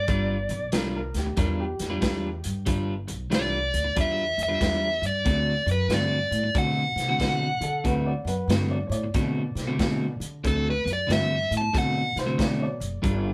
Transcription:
Already playing: D5
0.08 G1 G3 D4 F4 B4, kick, closed hi-hat
0.49 B1, muted clean electric guitar stroke, closed hi-hat
0.72 C2 G3 D4 F4 A#4 B4, snare, closed hi-hat
0.96 A#4
1.14 D2 G4, snare, closed hi-hat
1.26 muted clean electric guitar stroke
1.37 E2 G3 D4 F4 A#4 B4, kick, snare, closed hi-hat
1.60 G4
1.79 F2, snare, closed hi-hat
1.90 G3 D4 F4 B4
2.01 E2 G3 D4 F4 B4, kick, snare, closed hi-hat
2.44 G2, closed hi-hat
2.66 G1 G3 D4 F4 B4, kick, closed hi-hat
3.08 B1, muted clean electric guitar stroke, closed hi-hat
3.30 C2 G3 D4 F4 B4, snare, closed hi-hat
3.35 D5
3.74 D2, closed hi-hat
3.84 muted clean electric guitar stroke
3.96 E2 G3 D4 F4 B4, kick, closed hi-hat
4.01 E5
4.38 F2, closed hi-hat
4.43 E5
4.48 G3 D4 F4 B4
4.60 E2 G3 D4 F4 B4, kick, snare, closed hi-hat
5.02 G2, closed hi-hat
5.07 D5
5.25 D2 D3 A3 C4 F#4, kick, snare, closed hi-hat
5.66 F#2, muted clean electric guitar stroke, closed hi-hat
5.72 B4
5.89 G2 D3 A3 C4 F#4, snare, closed hi-hat
5.94 D5
6.31 A2, closed hi-hat
6.44 muted clean electric guitar stroke
6.55 B2 D3 A3 C4 F#4 F#5, kick, closed hi-hat
6.96 C3, snare, closed hi-hat
7.08 D3 A3 C4 F#4
7.20 B2 D3 A3 C4 F#4, kick, snare, closed hi-hat
7.61 D3 A4, closed hi-hat
7.84 D2 D3 A3 C4 F#4 B4, kick, closed hi-hat
8.06 D5
8.25 F#2 B4, muted clean electric guitar stroke, closed hi-hat
8.48 G2 D3 A3 C4 F#4, snare, closed hi-hat
8.71 D5
8.87 A2 C#5
8.91 D5, closed hi-hat
9.04 muted clean electric guitar stroke
9.14 B2 D3 A3 C4 F#4, kick, snare, closed hi-hat
9.55 C3, snare, closed hi-hat
9.67 D3 A3 C4 F#4
9.78 B2 D3 A3 C4 F#4, kick, snare, closed hi-hat
10.20 D3, closed hi-hat
10.44 D2 D3 A3 C4 F#4 A4, kick, closed hi-hat
10.70 B4
10.85 F#2, muted clean electric guitar stroke, closed hi-hat
10.93 D5
11.07 G2 D3 A3 C4 F#4, snare, closed hi-hat
11.13 E5
11.51 A2, closed hi-hat
11.57 A5, muted clean electric guitar stroke
11.73 B2 D3 A3 C4 F#4, kick, snare, closed hi-hat
11.78 F#5
12.16 C3 C5, snare, closed hi-hat
12.26 D3 A3 C4 F#4
12.38 B2 D3 A3 C4 F#4, kick, snare, closed hi-hat
12.42 D5
12.58 C#5
12.62 D5
12.80 F#1, closed hi-hat
13.02 G1 G3 D4 F4 B4, kick, closed hi-hat

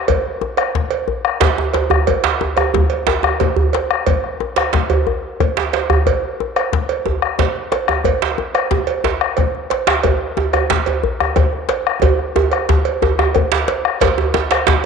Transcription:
0.08 bombo low, cowbell, djembe bass
0.41 djembe slap, djembe tone
0.57 bombo rim, cowbell
0.75 bombo low, djembe slap
0.91 cowbell
1.08 djembe bass
1.25 bombo rim
1.40 bombo low, cowbell, djembe slap, djembe tone
1.58 djembe slap, djembe tone
1.74 cowbell, djembe slap, djembe tone
1.90 bombo rim, djembe bass
2.07 bombo low, cowbell, djembe bass
2.24 djembe slap
2.41 djembe slap, djembe tone
2.57 bombo rim, cowbell, djembe tone
2.74 bombo low, djembe slap, djembe bass
2.90 cowbell
3.07 djembe slap, djembe bass
3.23 bombo rim, djembe tone
3.40 bombo low, cowbell, djembe slap, djembe tone
3.56 djembe slap, djembe bass
3.73 bombo rim, cowbell, djembe slap
3.91 bombo rim
4.07 bombo low, cowbell, djembe slap, djembe bass
4.24 bombo rim
4.40 djembe tone
4.56 bombo rim, cowbell, djembe slap
4.73 bombo low, djembe slap
4.90 bombo rim, cowbell, djembe bass
5.07 bombo rim, djembe bass
5.40 bombo low, cowbell, djembe slap, djembe tone
5.57 bombo rim, djembe slap
5.73 bombo rim, cowbell, djembe slap
5.90 bombo rim, djembe bass
6.06 bombo low, cowbell, djembe bass
6.40 djembe tone
6.56 bombo rim, cowbell
6.73 bombo low, djembe slap
6.89 cowbell
7.05 djembe tone, djembe bass
7.22 bombo rim
7.39 bombo low, cowbell, djembe slap, djembe tone
7.56 djembe slap
7.72 bombo rim, cowbell, djembe slap
7.88 bombo rim, djembe tone
8.04 bombo low, cowbell, djembe bass
8.22 djembe slap
8.38 djembe slap, djembe tone
8.55 bombo rim, cowbell
8.71 bombo low, djembe slap, djembe tone
8.87 cowbell
9.04 djembe slap, djembe bass
9.21 bombo rim
9.37 bombo low, cowbell, djembe slap, djembe tone
9.55 djembe slap
9.70 bombo rim, cowbell, djembe slap
9.87 bombo rim, djembe slap
10.03 bombo low, cowbell, djembe tone, djembe bass
10.37 djembe slap, djembe tone
10.53 bombo rim, cowbell, djembe tone
10.70 bombo low, djembe slap
10.86 cowbell, djembe tone
11.04 djembe bass
11.20 bombo rim, djembe tone
11.36 bombo low, cowbell, djembe slap, djembe tone
11.53 djembe slap
11.69 bombo rim, cowbell, djembe slap
11.87 bombo rim
12.02 bombo low, cowbell, djembe slap, djembe tone, djembe bass
12.19 bombo rim
12.36 djembe tone
12.52 bombo rim, cowbell
12.69 bombo low, djembe slap, djembe tone
12.85 cowbell
13.02 bombo rim, djembe tone, djembe bass
13.19 bombo rim, djembe tone
13.35 bombo low, cowbell, djembe slap, djembe tone
13.52 djembe slap
13.68 cowbell, djembe slap
13.85 bombo rim
14.01 bombo low, cowbell, djembe slap, djembe bass, shekere
14.18 djembe tone
14.34 djembe slap, djembe tone
14.51 bombo rim, cowbell, djembe slap, shekere
14.67 bombo low, djembe slap

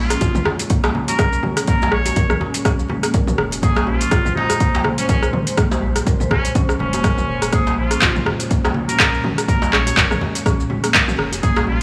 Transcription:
Already playing: A#1 A#2 G#3 C#4 F4
0.10 C#4, cross-stick, closed hi-hat, muted conga, shaker
0.21 F1 F4, kick, closed hi-hat, djembe tone, djembe bass, shaker
0.35 G#3, mid tom, low conga, shaker
0.45 cross-stick, djembe slap, djembe tone, djembe bass
0.59 closed hi-hat, muted conga, shaker
0.70 A#3, kick, closed hi-hat, shaker
0.83 F3, cross-stick, djembe slap, djembe tone, high conga, shaker
0.95 muted conga, low conga
1.08 C#4 A#4, closed hi-hat, djembe tone, high conga, shaker
1.19 A#4, kick, cross-stick, closed hi-hat, high conga, shaker
1.33 G#3, muted conga, shaker
1.43 mid tom, djembe tone, low conga
1.57 cross-stick, closed hi-hat, shaker
1.68 A#3 A#4, kick, closed hi-hat, muted conga, djembe tone, shaker
1.82 F3, djembe slap, high conga, shaker
1.92 A#1 G#3 C#5, cross-stick
2.06 closed hi-hat, muted conga, djembe tone, shaker
2.16 F1 A#4, kick, closed hi-hat, djembe bass, shaker
2.30 G#3, cross-stick, mid tom, djembe tone, shaker
2.41 djembe slap, djembe bass
2.54 closed hi-hat, muted conga, shaker
2.65 C#4, kick, cross-stick, closed hi-hat, mid tom, djembe tone, shaker
2.79 F3, shaker
2.89 G#3, muted conga, djembe tone, high conga, low conga
3.03 A#3, cross-stick, closed hi-hat, shaker
3.14 A#4, kick, closed hi-hat, high conga, shaker
3.27 mid tom, muted conga, djembe tone, shaker
3.38 F1, cross-stick
3.51 closed hi-hat, djembe tone, shaker
3.62 A#3 G#4 C5, kick, closed hi-hat, muted conga, shaker
3.75 cross-stick, djembe slap, high conga, shaker
3.87 A#1 F3 F4, djembe tone
4.01 C#4, closed hi-hat, muted conga, shaker
4.11 F1 F4, kick, cross-stick, closed hi-hat, djembe tone, djembe bass, shaker
4.25 G#3, mid tom, low conga, shaker
4.35 D#4, djembe slap, djembe bass
4.50 cross-stick, closed hi-hat, muted conga, djembe tone, shaker
4.60 A#3, kick, closed hi-hat, shaker
4.74 F3, djembe slap, high conga, djembe tone, shaker
4.84 cross-stick, muted conga, low conga
4.98 C#4, closed hi-hat, high conga, shaker
5.08 C#4 A#4, kick, closed hi-hat, high conga, djembe tone, shaker
5.22 G#3, cross-stick, muted conga, shaker
5.33 mid tom, djembe tone, low conga
5.47 closed hi-hat, shaker
5.58 A#3, kick, cross-stick, closed hi-hat, muted conga, shaker
5.71 F3, djembe slap, high conga, djembe tone, shaker
5.82 A#1 G#3
5.95 cross-stick, closed hi-hat, muted conga, djembe tone, shaker
6.07 F1 A#4, kick, closed hi-hat, djembe bass, shaker
6.20 G#3, mid tom, low conga, shaker
6.31 C#4, kick, cross-stick, djembe slap, djembe tone, djembe bass
6.45 closed hi-hat, muted conga, shaker
6.55 C#4, kick, closed hi-hat, mid tom, djembe tone, shaker
6.69 F3, cross-stick, shaker
6.79 F1 G#3 C#4, muted conga, high conga, low conga
6.93 A#3, closed hi-hat, djembe tone, shaker
7.04 A#4, kick, cross-stick, closed hi-hat, high conga, shaker
7.18 mid tom, muted conga, djembe tone, shaker
7.29 F1
7.42 F1, cross-stick, closed hi-hat, shaker
7.52 A#3 C#4 G#4, kick, cross-stick, closed hi-hat, muted conga, shaker
7.67 djembe slap, high conga, djembe tone, shaker
7.77 A#1 F3 F4
7.91 C#4, cross-stick, closed hi-hat, muted conga, shaker
8.02 F1 F4, kick, clap, closed hi-hat, djembe tone, djembe bass, shaker
8.15 G#3, mid tom, low conga, shaker
8.26 cross-stick, djembe slap, djembe tone, djembe bass
8.40 closed hi-hat, muted conga, shaker
8.51 A#3, kick, closed hi-hat, shaker
8.64 F3, cross-stick, djembe slap, high conga, djembe tone, shaker
8.74 muted conga, low conga
8.88 C#4 A#4, closed hi-hat, high conga, djembe tone, shaker
9.00 A#4, kick, cross-stick, clap, closed hi-hat, high conga, shaker
9.13 G#3, muted conga, shaker
9.24 mid tom, djembe tone, low conga
9.38 cross-stick, closed hi-hat, shaker
9.48 A#3 A#4, kick, closed hi-hat, muted conga, djembe tone, shaker
9.62 F3, djembe slap, high conga, shaker
9.72 A#1 G#3 C#5, cross-stick, clap
9.86 closed hi-hat, muted conga, djembe tone, shaker
9.97 F1 A#4, kick, clap, closed hi-hat, djembe bass, shaker
10.11 G#3, cross-stick, mid tom, djembe tone, shaker
10.21 djembe slap, djembe bass
10.35 closed hi-hat, muted conga, shaker
10.46 C#4, kick, cross-stick, closed hi-hat, mid tom, djembe tone, shaker
10.60 F3, shaker
10.70 G#3, muted conga, high conga, djembe tone, low conga
10.84 A#3, cross-stick, closed hi-hat, shaker
10.94 A#4, kick, clap, closed hi-hat, high conga, shaker
11.08 mid tom, muted conga, djembe tone, shaker
11.19 F1, cross-stick
11.32 closed hi-hat, djembe tone, shaker
11.43 A#3 G#4 C5, kick, closed hi-hat, muted conga, shaker
11.56 cross-stick, djembe slap, high conga, shaker
11.67 A#1 F3 F4, djembe tone

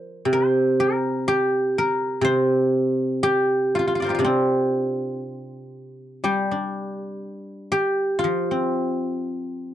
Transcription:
Already playing: F3 A#4 D5
0.25 C3
0.33 C5
0.80 A#4
1.28 G4
1.78 A#4
2.21 C3 C5
3.23 G4
3.75 F4
3.88 F4
3.95 F4
4.00 F4 D5
4.04 A#4 C5
4.09 F4 G4
4.15 F4
4.19 C3 D4
4.25 C4
6.24 G3 G4
6.51 D4
7.72 G4
8.19 F4
8.24 F3
8.51 C4

